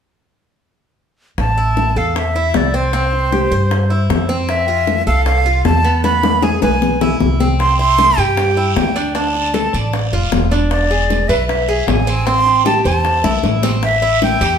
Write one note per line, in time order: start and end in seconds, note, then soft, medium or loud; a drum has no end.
1.38 1.92 A1 medium
1.38 1.99 A5 medium
1.38 high bongo medium
1.58 1.95 E4 medium
1.77 high bongo soft
1.96 2.50 E2 medium
1.96 2.34 A4 medium
1.96 2.19 F5 medium
2.16 2.58 E5 medium
2.16 high bongo medium
2.36 2.73 E4 medium
2.54 3.45 C2 medium
2.54 2.77 D5 medium
2.54 high bongo medium
2.54 low bongo medium
2.74 2.92 C4 medium
2.74 4.30 C5 medium
2.93 3.31 C4 medium
2.93 high bongo medium
3.13 high bongo soft
3.32 3.51 G4 medium
3.32 high bongo medium
3.51 4.06 G2 medium
3.51 3.89 C5 medium
3.51 high bongo soft
3.71 high bongo medium
3.90 4.28 E4 medium
4.10 5.01 F2 medium
4.10 high bongo medium
4.10 low bongo medium
4.29 4.67 C4 medium
4.29 high bongo soft
4.49 5.03 E5 medium
4.49 high bongo medium
4.68 5.06 F4 medium
4.87 high bongo medium
5.07 5.61 C2 medium
5.07 5.44 A4 medium
5.07 5.25 F5 medium
5.26 5.62 F5 medium
5.26 high bongo medium
5.46 5.83 F4 medium
5.65 6.56 E2 medium
5.65 6.01 A5 medium
5.65 high bongo medium
5.65 low bongo medium
5.84 6.03 B3 medium
6.04 6.42 B3 medium
6.04 6.45 B5 medium
6.04 high bongo medium
6.23 high bongo medium
6.42 6.62 G#4 medium
6.42 6.62 G#5 medium
6.42 high bongo medium
6.62 7.16 B1 medium
6.62 7.00 B4 medium
6.62 7.17 G#5 medium
6.62 high bongo medium
6.82 low bongo medium
7.01 7.39 E4 medium
7.01 low bongo medium
7.20 8.12 C2 medium
7.20 low bongo medium
7.40 7.78 C4 medium
7.40 low bongo medium
7.59 7.77 C6 medium
7.59 high bongo medium
7.59 long guiro medium
7.79 8.17 E4 medium
7.79 8.20 C6 loud
7.98 high bongo medium
7.98 short guiro medium
8.17 8.72 G2 medium
8.17 8.56 G4 medium
8.17 8.76 G5 medium
8.17 short guiro medium
8.37 high bongo medium
8.37 long guiro medium
8.57 8.95 E4 medium
8.76 9.67 D2 medium
8.76 9.17 G5 medium
8.76 high bongo medium
8.76 low bongo medium
8.76 short guiro medium
8.95 9.14 D4 medium
8.95 short guiro medium
9.15 9.53 D4 medium
9.15 9.93 A5 medium
9.15 high bongo medium
9.15 long guiro medium
9.35 high bongo soft
9.54 9.73 A4 medium
9.54 high bongo medium
9.54 short guiro medium
9.73 10.10 A1 medium
9.73 10.12 D5 medium
9.73 high bongo soft
9.73 short guiro medium
9.93 high bongo medium
9.93 long guiro medium
10.12 10.30 F1 medium
10.12 10.50 F4 medium
10.32 11.23 E1 medium
10.32 high bongo medium
10.32 low bongo medium
10.32 short guiro medium
10.51 10.89 D4 medium
10.51 high bongo soft
10.51 short guiro medium
10.70 11.30 D5 medium
10.70 high bongo medium
10.70 long guiro medium
10.91 11.28 G#4 medium
11.10 high bongo soft
11.10 short guiro medium
11.28 11.84 B1 medium
11.28 11.67 B4 medium
11.28 11.48 E5 medium
11.28 short guiro medium
11.48 11.89 E5 medium
11.48 high bongo medium
11.48 long guiro medium
11.68 12.06 G#4 medium
11.87 12.79 A1 medium
11.87 12.28 G#5 medium
11.87 high bongo medium
11.87 low bongo medium
11.87 short guiro medium
12.07 12.26 C4 medium
12.07 short guiro medium
12.26 12.64 C4 medium
12.26 12.65 C6 loud
12.26 high bongo medium
12.26 long guiro medium
12.46 high bongo soft
12.65 12.84 G4 medium
12.65 12.84 A5 medium
12.65 high bongo medium
12.65 short guiro medium
12.84 13.21 E2 medium
12.84 13.23 C5 medium
12.84 13.40 A5 medium
12.84 high bongo soft
12.84 short guiro medium
13.04 high bongo medium
13.04 long guiro medium
13.24 13.42 B1 medium
13.24 13.62 E4 medium
13.24 high bongo medium
13.43 14.35 A1 medium
13.43 high bongo medium
13.43 short guiro medium
13.63 13.82 C4 medium
13.63 low bongo medium
13.63 short guiro medium
13.83 14.19 E5 medium
13.83 high bongo medium
13.83 long guiro medium
14.02 14.40 E4 medium
14.22 14.58 G5 medium
14.22 high bongo medium
14.22 short guiro medium
14.41 14.58 E2 medium
14.41 14.58 G4 medium
14.41 short guiro medium